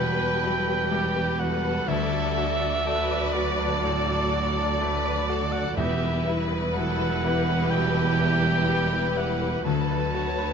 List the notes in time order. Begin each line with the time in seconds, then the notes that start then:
Already playing: E1 E2 B2 E3 G3 B3 E4 F#4 G4 B4 E5 G5
0.19 B4
0.43 F#3 E5
0.67 B4
0.91 G3 G4 E5
1.15 B4
1.39 F#4 A4 F#5
1.63 E4 B4
1.88 D2 D3 F#4 D5 E5
2.12 A3 D5
2.36 D4 F#4
2.62 D5
2.85 F#3 A3 A4 B4
3.10 D5
3.33 F#4 D5
3.58 D5 A5
3.84 A2 A4
4.08 D5 A5
4.33 F#4
4.56 D5 A5
4.80 A3 B4
5.05 D5
5.28 F#4 A4
5.52 D5 F#5
5.77 E1 E2 E3 G3 E4 G4 B4 E5
6.03 B4
6.26 B3 E4 B4
6.50 E4 B4
6.73 F#3 A4 F#5
6.98 B4
7.23 E4 G4 E5
7.49 B4
7.70 B2 E5 G5
7.97 B4
8.19 E4 E5
8.44 B4
8.67 G3 E5
8.92 B4
9.17 E4 F#5
9.40 E4 B4
9.64 D2 D3 F#3 F#4 A4 B4 A5
9.90 B4
10.14 B3 F#4 C#5
10.38 B4